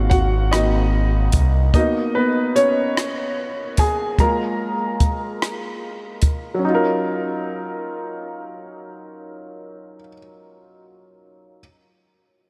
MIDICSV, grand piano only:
0, 0, Header, 1, 2, 480
1, 0, Start_track
1, 0, Key_signature, -6, "minor"
1, 0, Tempo, 816327
1, 1021, Time_signature, 6, 3, 24, 8
1, 7349, End_track
2, 0, Start_track
2, 0, Title_t, "Grand piano"
2, 0, Program_c, 0, 0
2, 0, Control_c, 0, 64, 127
2, 0, Note_on_c, 0, 58, 46
2, 0, Note_on_c, 0, 60, 45
2, 0, Note_on_c, 0, 65, 63
2, 0, Note_on_c, 0, 66, 55
2, 0, Note_on_c, 0, 77, 63
2, 0, Note_on_c, 0, 78, 70
2, 57, Note_off_c, 0, 78, 0
2, 57, Note_on_c, 0, 78, 71
2, 70, Note_off_c, 0, 66, 0
2, 70, Note_on_c, 0, 66, 61
2, 111, Note_off_c, 0, 78, 0
2, 123, Note_off_c, 0, 66, 0
2, 280, Note_off_c, 0, 58, 0
2, 283, Note_off_c, 0, 60, 0
2, 302, Note_on_c, 0, 75, 68
2, 309, Note_on_c, 0, 58, 36
2, 312, Note_on_c, 0, 60, 33
2, 312, Note_on_c, 0, 66, 42
2, 316, Note_on_c, 0, 63, 53
2, 521, Note_off_c, 0, 58, 0
2, 523, Note_off_c, 0, 60, 0
2, 523, Note_off_c, 0, 66, 0
2, 818, Note_off_c, 0, 75, 0
2, 825, Note_off_c, 0, 63, 0
2, 1024, Note_on_c, 0, 75, 73
2, 1028, Note_on_c, 0, 58, 48
2, 1028, Note_on_c, 0, 59, 42
2, 1030, Control_c, 0, 64, 0
2, 1031, Note_on_c, 0, 63, 64
2, 1033, Note_off_c, 0, 65, 0
2, 1034, Note_on_c, 0, 66, 48
2, 1035, Note_off_c, 0, 77, 0
2, 1138, Control_c, 0, 64, 127
2, 1252, Note_off_c, 0, 63, 0
2, 1264, Note_on_c, 0, 71, 71
2, 1267, Note_off_c, 0, 59, 0
2, 1270, Note_off_c, 0, 75, 0
2, 1275, Note_on_c, 0, 59, 53
2, 1344, Note_off_c, 0, 58, 0
2, 1347, Note_off_c, 0, 66, 0
2, 1492, Note_off_c, 0, 59, 0
2, 1504, Note_on_c, 0, 73, 87
2, 1510, Note_off_c, 0, 71, 0
2, 1514, Note_on_c, 0, 61, 55
2, 2204, Note_off_c, 0, 61, 0
2, 2230, Note_on_c, 0, 80, 77
2, 2237, Note_on_c, 0, 68, 65
2, 2244, Note_off_c, 0, 73, 0
2, 2449, Note_off_c, 0, 80, 0
2, 2453, Note_off_c, 0, 68, 0
2, 2468, Note_on_c, 0, 56, 42
2, 2469, Control_c, 0, 64, 0
2, 2470, Note_on_c, 0, 82, 76
2, 2471, Note_on_c, 0, 58, 42
2, 2476, Note_on_c, 0, 65, 48
2, 2477, Note_on_c, 0, 70, 59
2, 2582, Control_c, 0, 64, 127
2, 2784, Note_off_c, 0, 56, 0
2, 2786, Note_off_c, 0, 58, 0
2, 2788, Note_off_c, 0, 65, 0
2, 3642, Note_off_c, 0, 82, 0
2, 3646, Note_off_c, 0, 70, 0
2, 3848, Note_on_c, 0, 54, 53
2, 3875, Note_on_c, 0, 61, 53
2, 3909, Note_on_c, 0, 63, 58
2, 3910, Control_c, 0, 64, 0
2, 3937, Note_on_c, 0, 65, 52
2, 3967, Note_on_c, 0, 70, 67
2, 4007, Control_c, 0, 64, 127
2, 5858, Note_off_c, 0, 54, 0
2, 5885, Note_off_c, 0, 61, 0
2, 5919, Note_off_c, 0, 63, 0
2, 5947, Note_off_c, 0, 65, 0
2, 5977, Note_off_c, 0, 70, 0
2, 6820, Control_c, 0, 64, 0
2, 7349, End_track
0, 0, End_of_file